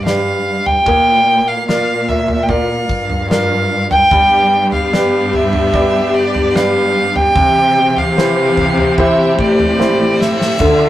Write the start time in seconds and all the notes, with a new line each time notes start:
Already playing: G2 G3 G4 B4 D5
0.05 G4 B4 D5 F5, snare
0.66 G5, floor tom
0.86 A#2 A#3, kick, floor tom
1.48 F5
1.67 A#2 F4 A#4 D5 F5, snare
2.09 E5, floor tom
2.28 floor tom
2.43 G5
2.49 F4 A#4 D5 F5, kick, floor tom
2.89 G2, kick
3.10 floor tom
3.30 F4 A#4 D5 F5, snare
3.90 G5, floor tom
4.11 G2 G3 B3 D4 G4, kick, floor tom
4.72 F5, floor tom
4.92 G2 G4 B4 D5, snare
5.33 E5, floor tom
5.53 floor tom
5.74 G4 B4 D5, kick, floor tom
6.13 G2 D5
6.35 floor tom
6.55 G4 B4 D5 F5, snare
7.16 G5, floor tom
7.35 C3 E3 C4 G4, kick, floor tom
7.97 F5, floor tom
8.16 C3 E3 G4 C5, snare
8.57 kick, floor tom
8.78 floor tom
8.97 E4 G4 C5 E5, kick, floor tom, reverse cymbal
9.38 A2 D5, kick
9.60 floor tom
9.79 E4 G4 C5, snare
10.21 E5, snare
10.41 snare
10.60 D3 D4 F4, kick, floor tom, crash